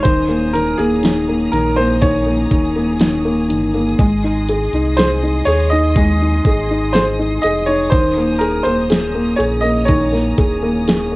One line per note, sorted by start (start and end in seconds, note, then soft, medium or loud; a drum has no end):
0.00 11.16 G#4 medium
0.00 0.55 C5 medium
0.04 0.75 D#1 loud
0.04 0.52 D#3 medium
0.04 3.96 C#4 medium
0.04 3.95 A#5 medium
0.04 11.16 D#6 medium
0.04 kick loud
0.04 closed hi-hat medium
0.28 0.77 A#3 medium
0.53 1.01 D#3 medium
0.53 0.79 A#4 medium
0.53 closed hi-hat medium
0.77 1.48 D#1 medium
0.77 1.27 A#3 soft
0.77 1.54 G#4 medium
0.77 closed hi-hat soft
1.03 1.51 D#3 medium
1.03 snare loud
1.03 closed hi-hat medium
1.29 1.76 A#3 soft
1.52 2.47 A#1 medium
1.52 2.01 D#3 medium
1.52 1.75 A#4 medium
1.52 closed hi-hat medium
1.76 2.25 A#3 medium
1.76 2.02 C5 medium
2.02 2.50 D#3 medium
2.02 3.45 C#5 medium
2.02 kick medium
2.02 closed hi-hat medium
2.26 2.75 A#3 soft
2.51 3.51 D#1 medium
2.51 2.99 D#3 medium
2.51 kick medium
2.51 closed hi-hat medium
2.76 3.24 A#3 soft
3.00 3.48 D#3 medium
3.00 snare loud
3.00 closed hi-hat medium
3.25 3.73 A#3 medium
3.49 3.95 G1 medium
3.49 3.97 D#3 medium
3.49 closed hi-hat medium
3.74 3.98 A#3 medium
3.99 4.69 G#1 loud
3.99 5.95 G#3 medium
3.99 7.89 D#5 medium
3.99 7.88 C6 medium
3.99 kick loud
3.99 closed hi-hat medium
4.24 4.73 D#4 medium
4.49 4.97 G#4 medium
4.49 closed hi-hat medium
4.73 5.42 C2 medium
4.73 5.22 D#4 soft
4.73 closed hi-hat soft
4.97 5.46 G#4 medium
4.97 5.08 C5 medium
4.97 snare loud
4.97 closed hi-hat medium
5.23 5.71 D#4 medium
5.45 6.41 D#2 medium
5.45 6.45 G#4 medium
5.45 5.71 C#5 medium
5.45 closed hi-hat medium
5.70 6.21 D#4 medium
5.70 6.97 D#5 loud
5.96 7.89 G#3 medium
5.96 kick medium
5.96 closed hi-hat medium
6.22 6.69 D#4 soft
6.45 7.39 G#1 medium
6.45 6.94 G#4 medium
6.45 kick medium
6.45 closed hi-hat medium
6.71 7.18 D#4 medium
6.93 7.43 G#4 medium
6.93 7.04 C5 medium
6.93 snare loud
6.93 closed hi-hat medium
7.19 7.67 D#4 medium
7.42 7.89 F1 medium
7.42 7.91 G#4 medium
7.42 7.65 D#5 medium
7.42 closed hi-hat medium
7.66 7.92 D#4 soft
7.66 7.92 C#5 medium
7.90 8.62 D#1 loud
7.90 9.87 D#3 medium
7.90 11.16 C#4 medium
7.90 8.42 C5 medium
7.90 11.16 A#5 medium
7.90 kick loud
7.90 closed hi-hat medium
8.17 8.65 A#3 soft
8.39 8.89 G#4 medium
8.39 8.65 A#4 medium
8.39 closed hi-hat medium
8.63 9.35 D#1 medium
8.63 9.13 A#3 soft
8.63 9.40 C5 medium
8.63 closed hi-hat soft
8.90 9.37 G#4 medium
8.90 snare loud
8.90 closed hi-hat medium
9.15 9.62 A#3 medium
9.36 10.34 A#1 medium
9.36 10.36 G#4 medium
9.36 9.42 C#5 medium
9.36 closed hi-hat medium
9.61 10.11 A#3 medium
9.61 9.88 D#5 medium
9.85 11.16 D#3 medium
9.85 11.16 C#5 medium
9.85 kick medium
9.85 closed hi-hat medium
10.13 10.61 A#3 soft
10.13 snare soft
10.38 11.16 D#1 medium
10.38 10.86 G#4 medium
10.38 kick medium
10.38 closed hi-hat medium
10.63 11.10 A#3 soft
10.88 11.16 G#4 soft
10.88 snare loud
10.88 closed hi-hat medium
11.12 11.16 A#3 soft